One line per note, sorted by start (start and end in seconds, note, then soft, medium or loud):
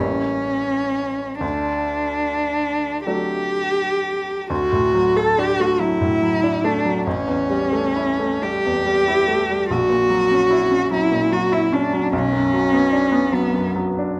0.00 1.37 A1 soft
0.00 1.37 G3 soft
0.00 1.38 A#3 soft
0.00 1.40 C#4 medium
0.00 1.38 E4 soft
1.41 3.03 D2 soft
1.41 3.04 D4 medium
3.06 4.46 F#3 soft
3.06 4.46 A3 soft
3.06 4.46 D4 soft
3.06 4.46 G4 medium
4.50 7.02 D2 soft
4.50 5.18 F#4 medium
4.72 5.07 A2 soft
4.95 5.29 F#3 soft
5.16 5.51 A3 soft
5.16 5.40 A4 medium
5.38 5.72 D4 soft
5.38 5.62 G4 medium
5.60 5.93 A3 soft
5.60 5.82 F#4 medium
5.80 6.14 F#3 soft
5.80 6.66 E4 medium
6.01 6.35 A2 soft
6.22 6.56 F#3 soft
6.43 6.76 D4 soft
6.64 6.98 A3 soft
6.64 7.06 D4 medium
6.85 7.06 F#3 soft
7.07 9.65 A1 soft
7.07 8.44 C#4 medium
7.27 7.64 E2 soft
7.50 7.87 G3 soft
7.72 8.11 A3 soft
7.96 8.34 E4 soft
8.20 8.56 A3 soft
8.43 8.78 G3 soft
8.43 9.69 G4 medium
8.65 8.99 E2 soft
8.86 9.20 G3 soft
9.08 9.41 E4 soft
9.28 9.61 A3 soft
9.50 9.70 G3 soft
9.69 12.10 A#1 soft
9.69 10.89 F#4 medium
9.89 10.22 A#2 soft
10.10 10.42 F#3 soft
10.31 10.63 C#4 soft
10.51 10.83 E4 soft
10.71 11.03 C#4 soft
10.91 11.24 F#3 soft
10.91 11.34 E4 medium
11.12 11.44 A#2 soft
11.31 11.64 F#3 soft
11.31 11.55 F#4 medium
11.52 11.85 E4 soft
11.52 11.75 E4 medium
11.72 12.05 C#4 soft
11.72 12.13 D4 medium
11.93 12.13 F#3 soft
12.13 14.20 B1 soft
12.13 13.36 C#4 medium
12.32 12.65 F#2 soft
12.53 12.85 F#3 soft
12.73 13.05 B3 soft
12.92 13.25 D4 soft
13.12 13.45 B3 soft
13.33 13.66 F#3 soft
13.33 13.76 B3 medium
13.53 13.88 F#2 soft
13.76 14.11 F#3 soft
13.99 14.20 D4 soft